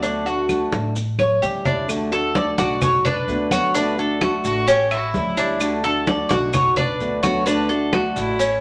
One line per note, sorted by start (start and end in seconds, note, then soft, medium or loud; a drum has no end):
0.00 0.66 D2 medium
0.00 0.25 D3 medium
0.00 0.25 A3 medium
0.00 0.25 D4 medium
0.00 0.24 F#4 medium
0.00 high conga soft
0.00 maracas medium
0.25 0.48 A3 medium
0.25 0.49 D4 medium
0.25 0.48 F#4 medium
0.25 0.71 F#4 medium
0.25 high conga soft
0.25 maracas soft
0.49 0.95 D3 soft
0.49 0.95 A3 soft
0.49 0.95 D4 medium
0.49 0.96 F#4 medium
0.49 high conga medium
0.49 claves medium
0.49 maracas medium
0.72 1.38 A1 loud
0.72 high conga loud
0.72 maracas soft
0.96 muted steel-string acoustic guitar stroke medium
0.96 high conga soft
0.96 maracas medium
1.19 1.42 C#5 medium
1.19 high conga medium
1.19 claves medium
1.19 maracas soft
1.42 2.52 D2 medium
1.42 1.65 E3 soft
1.42 1.65 G3 medium
1.42 1.65 C#4 medium
1.42 1.64 E4 medium
1.42 1.65 G4 medium
1.42 maracas medium
1.65 1.88 G3 medium
1.65 1.88 C#4 medium
1.65 1.88 D4 medium
1.65 1.88 E4 medium
1.65 low conga medium
1.65 maracas soft
1.88 2.11 D3 medium
1.88 2.11 A3 medium
1.88 2.11 D4 medium
1.88 2.10 F#4 medium
1.88 high conga soft
1.88 claves medium
1.88 maracas loud
2.12 2.35 A3 medium
2.12 2.35 D4 medium
2.12 2.34 F#4 medium
2.12 2.35 A4 medium
2.12 2.56 A4 medium
2.12 high conga soft
2.12 maracas soft
2.35 2.81 D3 medium
2.35 2.81 A3 soft
2.35 2.81 D4 soft
2.35 2.82 F#4 medium
2.35 2.58 D5 medium
2.35 high conga loud
2.35 maracas soft
2.58 3.24 B1 loud
2.58 3.04 F#4 medium
2.58 2.82 D5 loud
2.58 high conga loud
2.58 maracas medium
2.82 3.06 C#5 loud
2.82 muted steel-string acoustic guitar stroke medium
2.82 high conga soft
2.82 low conga medium
2.82 claves medium
2.82 maracas medium
3.05 3.50 D4 medium
3.05 3.49 B4 loud
3.05 high conga soft
3.05 low conga medium
3.05 maracas soft
3.28 4.38 D2 medium
3.28 3.51 D3 medium
3.28 3.51 A3 medium
3.28 3.50 B3 medium
3.28 3.50 F#4 medium
3.28 high conga soft
3.28 maracas soft
3.51 3.73 D3 medium
3.51 3.73 A3 medium
3.51 3.74 B3 medium
3.51 3.74 F#4 medium
3.51 3.75 C#5 medium
3.51 high conga medium
3.51 claves medium
3.51 maracas medium
3.74 3.97 D3 medium
3.74 3.97 A3 medium
3.74 4.20 D4 medium
3.74 3.97 D4 medium
3.74 3.96 F#4 medium
3.74 3.97 B4 loud
3.74 high conga soft
3.74 maracas loud
3.97 4.20 A3 medium
3.97 4.20 D4 medium
3.97 4.20 F#4 medium
3.97 5.34 A4 medium
3.97 high conga soft
3.97 maracas soft
4.20 4.66 D3 soft
4.20 4.67 A3 medium
4.20 4.67 D4 medium
4.20 4.66 F#4 medium
4.20 4.67 F#4 medium
4.20 high conga loud
4.20 claves medium
4.20 maracas soft
4.44 5.10 A1 loud
4.44 4.69 F#4 loud
4.44 high conga soft
4.44 maracas medium
4.67 4.90 C#4 medium
4.67 4.90 G4 loud
4.67 muted steel-string acoustic guitar stroke medium
4.67 high conga soft
4.67 maracas medium
4.91 5.36 E4 medium
4.91 5.13 F#4 loud
4.91 high conga soft
4.91 claves medium
4.91 maracas soft
5.13 6.24 D2 loud
5.13 5.36 E3 medium
5.13 5.36 G3 medium
5.13 5.37 C#4 soft
5.13 5.69 E4 medium
5.13 5.36 E4 medium
5.13 high conga medium
5.13 maracas soft
5.37 5.60 G3 medium
5.37 5.60 C#4 medium
5.37 5.83 D4 loud
5.37 5.60 E4 medium
5.37 maracas medium
5.60 5.83 D3 medium
5.60 5.83 A3 medium
5.60 5.83 D4 medium
5.60 5.82 F#4 medium
5.60 high conga soft
5.60 claves medium
5.60 maracas medium
5.83 6.06 A3 medium
5.83 6.06 D4 medium
5.83 6.06 F#4 medium
5.83 6.06 A4 medium
5.83 6.27 A4 loud
5.83 high conga soft
5.83 maracas soft
6.07 6.52 D3 medium
6.07 6.53 A3 soft
6.07 6.53 D4 soft
6.07 6.53 F#4 medium
6.07 6.30 D5 medium
6.07 high conga loud
6.07 maracas soft
6.29 6.96 B1 loud
6.29 6.76 F#4 medium
6.29 6.36 D5 loud
6.29 high conga loud
6.29 maracas medium
6.53 6.76 C#5 loud
6.53 muted steel-string acoustic guitar stroke medium
6.53 high conga soft
6.53 low conga medium
6.53 claves medium
6.53 maracas medium
6.76 7.22 D4 medium
6.76 7.22 B4 loud
6.76 high conga soft
6.76 low conga medium
6.76 maracas soft
7.00 8.10 D2 medium
7.00 7.22 D3 medium
7.00 7.23 A3 medium
7.00 7.23 B3 medium
7.00 7.22 F#4 medium
7.00 high conga soft
7.00 maracas soft
7.23 7.45 D3 medium
7.23 7.46 A3 medium
7.23 7.46 B3 medium
7.23 7.45 F#4 medium
7.23 7.46 F#4 medium
7.23 7.45 C#5 loud
7.23 high conga medium
7.23 claves medium
7.23 maracas medium
7.46 7.69 D3 medium
7.46 7.69 A3 medium
7.46 7.92 D4 medium
7.46 7.69 D4 medium
7.46 7.68 F#4 medium
7.46 7.68 B4 loud
7.46 high conga soft
7.46 maracas medium
7.69 7.92 A3 medium
7.69 7.92 D4 medium
7.69 7.92 F#4 medium
7.69 8.61 A4 medium
7.69 high conga soft
7.69 maracas soft
7.92 8.38 D3 soft
7.92 8.39 A3 soft
7.92 8.39 D4 medium
7.92 8.38 F#4 medium
7.92 8.39 F#4 medium
7.92 high conga loud
7.92 claves medium
7.92 maracas soft
8.16 8.61 A1 loud
8.16 8.61 E4 loud
8.16 high conga soft
8.16 maracas medium
8.39 8.61 C#4 medium
8.39 muted steel-string acoustic guitar stroke medium
8.39 high conga soft
8.39 maracas medium